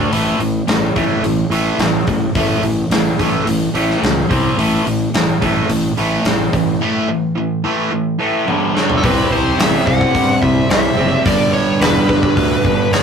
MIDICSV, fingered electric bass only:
0, 0, Header, 1, 2, 480
1, 0, Start_track
1, 0, Tempo, 556586
1, 103, Time_signature, 4, 2, 24, 8
1, 11235, End_track
2, 0, Start_track
2, 0, Title_t, "Fingered electric bass"
2, 0, Program_c, 0, 33
2, 102, Note_on_c, 0, 33, 81
2, 267, Note_off_c, 0, 33, 0
2, 343, Note_on_c, 0, 33, 85
2, 507, Note_off_c, 0, 33, 0
2, 585, Note_on_c, 0, 33, 83
2, 749, Note_off_c, 0, 33, 0
2, 830, Note_on_c, 0, 33, 84
2, 992, Note_off_c, 0, 33, 0
2, 1060, Note_on_c, 0, 33, 86
2, 1226, Note_off_c, 0, 33, 0
2, 1296, Note_on_c, 0, 33, 78
2, 1463, Note_off_c, 0, 33, 0
2, 1540, Note_on_c, 0, 33, 84
2, 1706, Note_off_c, 0, 33, 0
2, 1790, Note_on_c, 0, 33, 76
2, 1953, Note_off_c, 0, 33, 0
2, 2026, Note_on_c, 0, 33, 86
2, 2190, Note_off_c, 0, 33, 0
2, 2262, Note_on_c, 0, 33, 86
2, 2428, Note_off_c, 0, 33, 0
2, 2504, Note_on_c, 0, 33, 83
2, 2669, Note_off_c, 0, 33, 0
2, 2755, Note_on_c, 0, 33, 83
2, 2917, Note_off_c, 0, 33, 0
2, 2995, Note_on_c, 0, 33, 82
2, 3157, Note_off_c, 0, 33, 0
2, 3227, Note_on_c, 0, 33, 81
2, 3392, Note_off_c, 0, 33, 0
2, 3472, Note_on_c, 0, 37, 88
2, 3635, Note_off_c, 0, 37, 0
2, 3712, Note_on_c, 0, 36, 79
2, 3875, Note_off_c, 0, 36, 0
2, 3948, Note_on_c, 0, 33, 92
2, 4113, Note_off_c, 0, 33, 0
2, 4194, Note_on_c, 0, 33, 80
2, 4356, Note_off_c, 0, 33, 0
2, 4434, Note_on_c, 0, 33, 86
2, 4597, Note_off_c, 0, 33, 0
2, 4679, Note_on_c, 0, 33, 79
2, 4840, Note_off_c, 0, 33, 0
2, 4912, Note_on_c, 0, 33, 80
2, 5076, Note_off_c, 0, 33, 0
2, 5151, Note_on_c, 0, 33, 79
2, 5315, Note_off_c, 0, 33, 0
2, 5392, Note_on_c, 0, 33, 89
2, 5555, Note_off_c, 0, 33, 0
2, 5635, Note_on_c, 0, 33, 83
2, 5798, Note_off_c, 0, 33, 0
2, 7793, Note_on_c, 0, 36, 96
2, 7946, Note_off_c, 0, 36, 0
2, 8028, Note_on_c, 0, 36, 90
2, 8183, Note_off_c, 0, 36, 0
2, 8265, Note_on_c, 0, 33, 97
2, 8421, Note_off_c, 0, 33, 0
2, 8513, Note_on_c, 0, 36, 96
2, 8666, Note_off_c, 0, 36, 0
2, 8753, Note_on_c, 0, 43, 94
2, 8906, Note_off_c, 0, 43, 0
2, 8992, Note_on_c, 0, 36, 88
2, 9145, Note_off_c, 0, 36, 0
2, 9225, Note_on_c, 0, 36, 96
2, 9380, Note_off_c, 0, 36, 0
2, 9463, Note_on_c, 0, 30, 92
2, 9619, Note_off_c, 0, 30, 0
2, 9706, Note_on_c, 0, 31, 97
2, 9861, Note_off_c, 0, 31, 0
2, 9945, Note_on_c, 0, 31, 97
2, 10099, Note_off_c, 0, 31, 0
2, 10184, Note_on_c, 0, 28, 100
2, 10338, Note_off_c, 0, 28, 0
2, 10429, Note_on_c, 0, 31, 92
2, 10581, Note_off_c, 0, 31, 0
2, 10668, Note_on_c, 0, 38, 101
2, 10820, Note_off_c, 0, 38, 0
2, 10904, Note_on_c, 0, 31, 85
2, 11058, Note_off_c, 0, 31, 0
2, 11142, Note_on_c, 0, 31, 103
2, 11235, Note_off_c, 0, 31, 0
2, 11235, End_track
0, 0, End_of_file